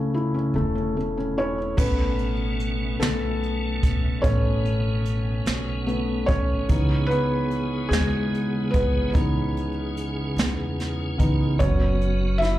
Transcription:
Already playing: C#2 C#3 A3 C#4 E4
0.14 E4
0.34 C#4
0.54 E1 A3
0.75 C#4
0.97 A3
1.17 C#4
1.37 C#4 E4 C#5
1.58 C#4
1.77 A1 B2 A3 B3 C#4 B4, kick, crash
2.19 closed hi-hat
2.60 closed hi-hat
3.00 B1 A3 A4, snare, closed hi-hat
3.43 closed hi-hat
3.83 E1, kick, closed hi-hat
4.22 A1 A3 B3 C#4 C#5, kick, closed hi-hat
4.65 closed hi-hat
5.05 closed hi-hat
5.46 B1, snare, closed hi-hat
5.87 A3 B3 C#4, closed hi-hat
6.26 G#1 C#4 C#5, kick, closed hi-hat
6.69 C#2 C#3 E3 B3 D#4 G#4, kick, closed hi-hat
7.06 B4
7.11 B3, closed hi-hat
7.51 closed hi-hat
7.89 D#2 G#4, closed hi-hat
7.93 G#3, snare
8.35 closed hi-hat
8.71 G#1 B3 B4, kick, closed hi-hat
9.10 E3 B3 D#4 B4
9.15 C#2 C#4, kick, closed hi-hat
9.57 closed hi-hat
9.97 closed hi-hat
10.36 E2, snare, closed hi-hat
10.80 snare, closed hi-hat
11.18 C#2 E3 B3 D#4, kick, closed hi-hat
11.58 F#1 F#3 B3 C#4 F#4 C#5, kick, closed hi-hat
12.01 closed hi-hat
12.38 E4 E5, closed hi-hat
12.43 snare

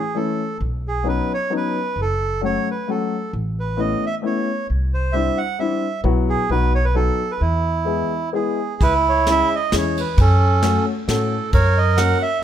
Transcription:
Already playing: G#4
0.15 E3 A3 C#4 E4 A4
0.61 B1
0.88 G#4
1.03 F#3 B3 C#4 D#4
1.08 B4
1.34 C#5
1.50 F#3 B3 C#4 D#4
1.57 B4
1.96 F#1
2.01 A4
2.41 F#3 A3 C#4 F#4 C#5
2.71 B4
2.88 F#3 A3 C#4 F#4 A4
3.33 A1
3.60 B4
3.77 A3 B3 C#4 E4 D#5
4.06 E5
4.22 A3 B3 C#4 E4
4.26 C#5
4.70 C2
4.94 C5
5.12 G3 C4 D4 E4 E5
5.37 F#5
5.59 G3 C4 D4 E4 E5
6.04 B1 F#3 B3 E4 F#4
6.29 G#4
6.49 B1 F#3 B3 D#4 F#4 B4
6.75 C#5
6.85 B4
6.94 F#3 B3 D#4 F#4 A4
7.31 B4
7.41 E2 E4
7.85 G#3 B3 E4 G#4
8.33 G#3 B3 E4 G#4
8.81 C#2 E4 B4, kick, ride
9.09 C#5
9.27 G#3 C#4 E4 G#4, snare, ride
9.31 E5
9.55 D#5
9.72 E2 G#3 C#4 E4 G#4, snare, ride
9.78 C#5
9.97 B4, ride
10.17 F#2 C#4 A4, kick, ride
10.62 A3 C#4 F#4 A4, snare, ride
11.08 A2 A3 C#4 F#4 A4, snare, ride
11.53 F#2 A#4 C#5, kick, ride
11.77 D#5
11.97 A#3 C#4 F#4 A#4 F#5, snare, ride
12.22 E5

